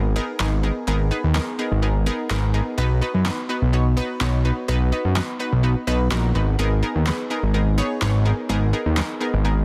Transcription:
Already playing: G#1
0.16 B3 D#4 G#4 A#4
0.40 G#1 B3 D#4 G#4 A#4, snare, clap
0.63 B3 D#4 G#4 A#4
0.87 G#1 B3 D#4 G#4 A#4
1.11 B3 D#4 G#4 B4
1.24 D#2
1.35 B3 D#4 G#4 A#4, snare, clap
1.59 B3 D#4 G#4 A#4
1.71 G#1
1.82 B3 D#4 G#4 A#4
2.06 B3 D#4 G#4 A#4
2.30 G#1 B3 D#4 G#4 A#4, snare, clap
2.54 B3 D#4 G#4 A#4
2.78 B1 B3 D#4 F#4 B4
3.02 B3 D#4 F#4 B4
3.14 F#2
3.25 B3 D#4 F#4 B4, snare, clap
3.49 B3 D#4 F#4 B4
3.62 B1
3.73 B3 D#4 F#4 C#5
3.97 B3 D#4 F#4 B4
4.21 B1 B3 D#4 F#4 C#5, snare, clap
4.45 B3 D#4 F#4 B4
4.68 B1 B3 D#4 F#4 B4
4.92 B3 D#4 F#4 B4
5.05 F#2
5.16 B3 D#4 F#4 B4, snare, clap
5.39 B3 D#4 F#4 B4
5.53 B1
5.63 B3 D#4 F#4 B4
5.87 B1 B3 D#4 F#4 B4
6.11 A#1 B3 D#4 F#4 A#4, snare, clap
6.35 G#1 B3 D#4 F#4 B4
6.59 G#1 B3 D#4 G#4 A#4
6.83 B3 D#4 G#4 A#4
6.95 D#2
7.06 B3 D#4 G#4 B4, snare, clap
7.30 B3 D#4 G#4 A#4
7.43 G#1
7.54 B3 D#4 G#4 A#4
7.78 B3 D#4 G#4 C#5
8.02 G#1 B3 D#4 G#4 C#5, snare, clap
8.25 B3 D#4 G#4 A#4
8.49 G#1 B3 D#4 G#4 A#4
8.73 B3 D#4 G#4 A#4
8.86 D#2
8.97 B3 D#4 G#4 A#4, snare, clap
9.21 B3 D#4 G#4 A#4
9.34 G#1
9.44 B3 D#4 G#4 A#4

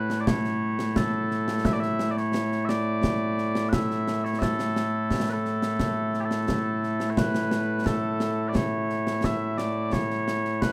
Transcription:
Already playing: A2 A3 E4 B4
0.10 snare
0.20 D5
0.27 C#5, concert bass drum, snare
0.44 snare
0.79 snare
0.96 A4, concert bass drum, snare
1.31 snare
1.48 snare
1.65 E5, concert bass drum, snare
1.73 D5
1.80 E5, snare
1.99 snare
2.11 D5
2.17 C#5, snare
2.34 snare
2.52 snare
2.65 E5, snare
2.69 D5
3.04 concert bass drum, snare
3.38 snare
3.55 snare
3.69 F#5, concert bass drum, snare
3.73 E5
3.90 snare
4.08 snare
4.24 C#5, snare
4.39 A4 E5, concert bass drum, snare
4.59 snare
4.76 snare
5.11 concert bass drum, snare
5.30 A4 B4
5.45 snare
5.62 snare
5.80 concert bass drum, snare
6.14 snare
6.21 G4
6.25 A4
6.31 snare
6.48 concert bass drum, snare
6.83 snare
7.00 snare
7.10 C#5
7.17 B4, concert bass drum, snare
7.35 snare
7.51 snare
7.86 A4, concert bass drum, snare
8.20 snare
8.49 D5
8.55 C#5, concert bass drum, snare
8.90 snare
9.07 snare
9.24 E5, concert bass drum, snare
9.58 D5, snare
9.92 C#5, concert bass drum, snare
10.10 snare
10.28 snare
10.45 snare
10.62 B4, concert bass drum, snare

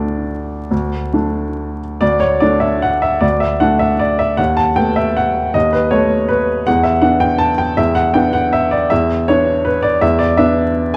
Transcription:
Already playing: D2 A3 D4 D5
0.71 D2
1.13 A3 D4
2.01 D2 D5
2.20 C#5
2.40 A3 D4 D5
2.60 E5
2.82 F#5
3.02 E5
3.21 D2 D5
3.40 E5
3.60 A3 D4 F#5
3.79 E5
3.99 D5
4.19 E5
4.37 D#2 F#5
4.57 A5
4.76 A3 B3 G5
4.96 E5
5.17 F#5
5.54 D#2 D#5
5.73 B4
5.91 A3 B3 C#5
6.28 B4
6.67 E2 F#5
6.83 E5
7.02 B3 D4 F#5
7.20 G5
7.38 A5
7.58 G5
7.77 E2 E5
7.95 F#5
8.14 B3 D4 G5
8.33 F#5
8.53 E5
8.71 D5
8.90 E2 E5
9.28 B3 D4 C#5
9.65 B4
9.82 D5
10.01 E2 E5
10.19 D5
10.37 B3 D4 E5

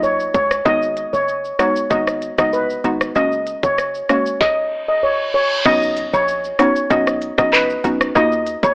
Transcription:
Already playing: B1
0.03 C#5, shaker
0.20 shaker
0.34 C#2 C#5, kick, closed hi-hat, shaker
0.51 cross-stick, shaker
0.65 G#1 G#3 B3 D#4 F#4 D#5, kick, shaker
0.82 shaker
0.97 closed hi-hat, shaker
1.13 F#1 C#5, shaker
1.28 shaker
1.45 shaker
1.59 G#3 B3 D#4 F#4 C#5, cross-stick, closed hi-hat, shaker
1.76 shaker
1.90 G#1 G#3 B3 D#4 F#4 D#5, kick, shaker
2.07 cross-stick, shaker
2.22 closed hi-hat, shaker
2.38 F#1 G#3 B3 D#4 F#4 D#5, kick, cross-stick, shaker
2.53 B4, shaker
2.70 shaker
2.84 G#1 G#3 B3 D#4 F#4, closed hi-hat, shaker
3.01 cross-stick, shaker
3.15 F#1 G#3 A#3 C#4 F#4 D#5, shaker
3.32 shaker
3.47 closed hi-hat, shaker
3.63 F#1 C#5, kick, shaker
3.78 cross-stick, shaker
3.95 shaker
4.09 G#3 A#3 C#4 F#4 C#5, cross-stick, closed hi-hat, shaker
4.26 shaker
4.41 D#5, kick, snare, reverse cymbal
4.88 D#5
5.03 C#5
5.34 C#5
5.65 B1 B3 C#4 D#4 F#4 D#5, kick, crash, impact, high woodblock, shaker
5.82 shaker
5.97 closed hi-hat, cabasa, shaker
6.13 A#1 C#5, high woodblock, shaker
6.28 shaker
6.44 shaker
6.59 B3 C#4 D#4 F#4 C#5, cross-stick, closed hi-hat, cabasa, high woodblock, shaker
6.76 shaker
6.90 B1 B3 C#4 D#4 F#4 D#5, kick, shaker
7.07 cross-stick, shaker
7.21 closed hi-hat, cabasa, shaker
7.38 A#1 B3 C#4 D#4 F#4 D#5, kick, cross-stick, shaker
7.52 B4, clap, high woodblock, shaker
7.70 shaker
7.84 B1 B3 C#4 D#4 F#4, closed hi-hat, cabasa, shaker
8.01 cross-stick, shaker
8.15 D#2 A#3 D#4 F4 F#4 D#5, high woodblock, shaker
8.32 shaker
8.47 closed hi-hat, cabasa, shaker
8.63 D#2 C#5, kick, high woodblock, shaker

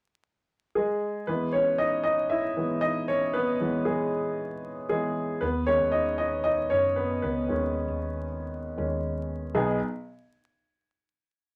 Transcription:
0.75 G#3 G#4
1.27 E3 G#3 B3 B4
1.53 C#4 C#5
1.78 D#4 D#5
2.04 D#4 D#5
2.30 E4 E5
2.57 E3 G#3 B3
2.81 D#4 D#5
3.08 C#4 C#5
3.33 B3 B4
3.60 E3 G#3 B3
3.85 G#3 G#4
4.89 E3 G#3 B3 G#4
5.41 D#2 B3 B4
5.67 D#3 G#3 C#4 C#5
5.81 D#2
5.92 D#4 D#5
6.18 D#4 D#5
6.44 D#4 D#5
6.70 F#1 C#4 C#5
6.96 B3 B4
7.22 C#2 B3 B4
7.48 D#2 D#3 G#3 C#4
7.88 D#2
8.77 D#2 D#3 G#3 C#4
9.55 B1 B3 D#4 G#4

